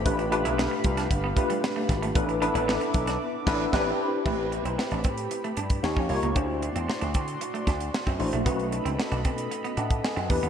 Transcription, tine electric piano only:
Already playing: A4
0.05 A3 D4 F4 G4 B4
0.31 A3 D4 F4 G4 B4
1.36 A3 D4 F4 G4 B4
2.15 B3 D4 E4 A4 B4
2.41 B3 D4 E4 A4 B4
3.46 B3 D4 E4 A4 B4
3.73 C4 D4 E4 G4 B4
4.25 A3 C4 E4 G4 B4
5.82 A#3 D#4 F4 G4 C#5
6.09 A#3 D#4 F4 G4 C#5
6.35 A3 D4 E4 F#4 C5
8.19 A3 D4 E4 F#4 C5
8.45 A3 C#4 D#4 F#4 B4
9.77 F#5
9.90 A5
10.04 G#5
10.17 F#5
10.29 B3 D4 E4 G4 B4

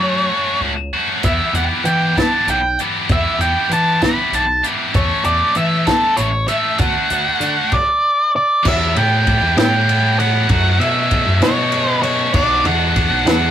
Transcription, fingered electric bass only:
0.00 F#3
0.60 C#2
1.24 E2
1.53 E2
1.84 E3
2.47 B1
3.09 E2
3.38 E2
3.69 E3
4.32 B1
4.95 E2
5.25 E2
5.56 E3
6.18 A1
6.79 D2
7.11 D2
7.40 D3
8.65 E2
8.96 A2
9.41 E2
9.57 A2
10.49 F#2
10.80 B2
11.26 F#2
11.40 B2
12.34 B1
12.64 E2
13.11 B1
13.25 E2

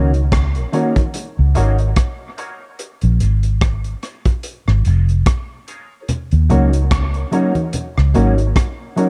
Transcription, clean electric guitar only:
Already playing: A#3 C#4 F#4
0.72 D#3 A#3 C#4 F#4
1.55 D#3 A#3 C#4 F#4
2.37 D#3 A#3 C#4 F#4
3.20 F3 G#3 C#4 F4
4.02 F3 G#3 C#4 F4
4.85 F3 G#3 C#4 F4
5.67 F3 G#3 C#4 F4
6.49 F#3 A#3 C#4 F#4
7.31 F#3 A#3 C#4 F#4
8.14 F#3 A#3 C#4 F#4
8.96 F#3 A#3 C#4 F#4

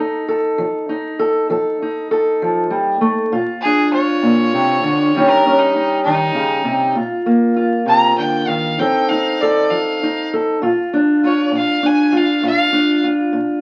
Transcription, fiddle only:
3.61 G#4
3.93 C#5
5.30 A#4
5.59 D#4
6.03 D#4
7.88 A#5
8.18 G5
8.47 F5
8.79 G5
9.08 F5
9.41 D5
9.71 F5
11.24 C#5
11.57 F5
11.86 G#5
12.17 F5
12.46 F5

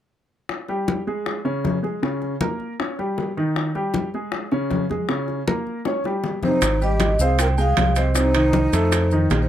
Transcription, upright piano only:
0.69 G3 G4
1.07 G#3 G#4
1.45 C#3 C#4
1.83 G#3 G#4
2.02 C#3 C#4
2.41 A#3 A#4
2.80 C#4 C#5
2.99 G3 G4
3.37 D#3 D#4
3.75 G3 G4
4.14 G#3 G#4
4.52 C#3 C#4
4.90 G#3 G#4
5.08 C#3 C#4
5.47 A#3 A#4
5.86 C#4 C#5
6.05 G3 G4
6.43 C3 C4
6.82 G3 G4
7.21 C4 C5
7.58 G#3 G5
7.97 C4 C5
8.15 C3 C4
8.35 D#3 D#4
8.73 A3 A4
9.12 D#3 D#4

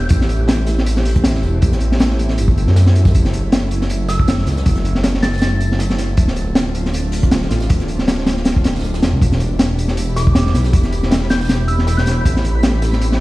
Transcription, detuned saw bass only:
0.11 A1
1.43 E1
1.63 A1
2.38 G1
2.67 F#2
3.15 F#1
4.47 C#2
4.66 F#1
5.99 F#1
6.18 D1
7.51 A1
7.70 D1
9.03 E1
9.13 C2
9.22 E1
10.54 B1
10.73 E1
12.06 E1
12.25 A1

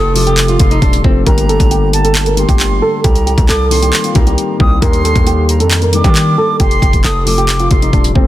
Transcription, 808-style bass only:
Already playing: F1
0.60 F1
0.82 D#1
1.04 F1
1.27 G1
1.60 G1
2.49 G1
3.04 C2
3.38 C2
3.49 C2
4.16 C2
4.60 C2
4.82 D#2
5.15 D#2
5.60 F2
6.04 D#3
6.60 F1
6.82 F1
7.04 F1
7.71 F1
7.93 D#1
8.15 F1

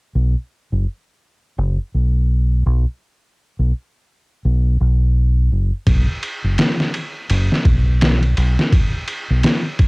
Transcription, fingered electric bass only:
0.15 B1
0.72 F#1
1.58 F#1
1.94 B1
2.66 B1
3.59 B1
4.45 B1
4.80 B1
5.52 F#1
5.87 B1
6.44 F#1
7.30 F#1
7.65 B1
8.37 B1
9.30 B1

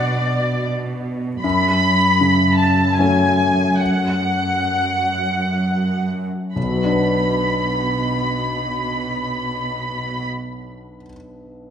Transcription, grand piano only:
Already playing: F#3 B3 D4
1.44 F#2
2.21 C#3
2.99 F#3 A3 C#4
6.56 B1
6.63 B2
6.70 F#3
6.77 B3
6.84 D4
6.91 B4

